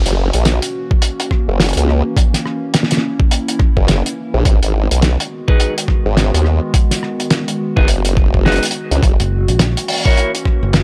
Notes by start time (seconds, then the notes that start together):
Already playing: E3 A#3 C#4 F#4
0.05 F#1, closed hi-hat
0.33 A#1, closed hi-hat
0.45 snare, closed hi-hat
0.62 closed hi-hat
0.91 kick
1.02 closed hi-hat
1.20 closed hi-hat
1.31 kick, cross-stick
1.48 F#1
1.60 snare, closed hi-hat
1.64 closed hi-hat
1.69 closed hi-hat
1.73 C#2, closed hi-hat
1.77 closed hi-hat
1.89 cross-stick
2.17 E4, kick, closed hi-hat
2.34 snare, closed hi-hat
2.46 cross-stick
2.74 snare, closed hi-hat
2.83 snare
2.91 snare, closed hi-hat
2.97 snare
3.20 kick
3.31 closed hi-hat
3.48 closed hi-hat
3.59 kick, cross-stick
3.77 F#1, kick
3.88 snare, closed hi-hat
4.06 closed hi-hat
4.34 A#1
4.45 G#1 D#3 G#3 B3 F#4, kick, closed hi-hat
4.63 G#1, closed hi-hat
4.91 B1, closed hi-hat
5.02 snare, closed hi-hat
5.20 closed hi-hat
5.48 D#4 F#4 G#4 B4, kick
5.60 closed hi-hat
5.78 closed hi-hat
5.88 kick, cross-stick
6.06 G#1
6.17 snare, closed hi-hat
6.34 D#2, closed hi-hat
6.45 cross-stick
6.74 kick, closed hi-hat
6.91 snare, closed hi-hat
7.03 cross-stick
7.20 closed hi-hat
7.30 snare, closed hi-hat
7.48 closed hi-hat
7.76 F#1 D#4 F#4 G#4 B4, kick
7.88 closed hi-hat
8.05 closed hi-hat
8.17 kick, cross-stick
8.34 kick
8.45 D#4 F#4 G#4 B4, snare, closed hi-hat
8.52 closed hi-hat
8.56 closed hi-hat
8.63 closed hi-hat
8.65 closed hi-hat
8.71 closed hi-hat
8.91 C#2, closed hi-hat
9.03 F#1 E3 A#3 C#4, kick, closed hi-hat
9.20 F#1, closed hi-hat
9.48 A#1, closed hi-hat
9.59 snare, closed hi-hat
9.77 closed hi-hat
9.88 open hi-hat
10.05 E4 F#4 A#4 C#5, kick
10.17 closed hi-hat
10.35 closed hi-hat
10.45 kick, cross-stick
10.63 F#1
10.73 snare, closed hi-hat